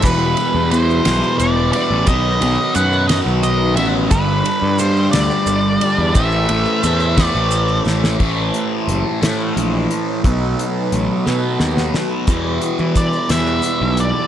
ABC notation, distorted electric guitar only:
X:1
M:6/8
L:1/8
Q:3/8=59
K:Bphr
V:1 name="Distorted electric guitar" clef=bass
[E,,B,,E,] [B,,E,] [E,,B,,E,] [E,,B,,E,]2 [B,,E,] | [B,,F,B,] [F,B,] [B,,F,B,] [B,,F,B,]2 [F,B,] | [G,,D,G,] [D,G,] [G,,D,G,] [G,,D,G,]2 [D,G,] | [A,,E,A,] [E,A,] [A,,E,A,] [A,,E,A,]2 [E,A,] |
[A,,E,A,]3 [A,,E,A,]3 | [B,,F,B,]3 [B,,F,B,]3 | [K:Em] [E,,B,,E,]3 [E,,B,,E,]3 |]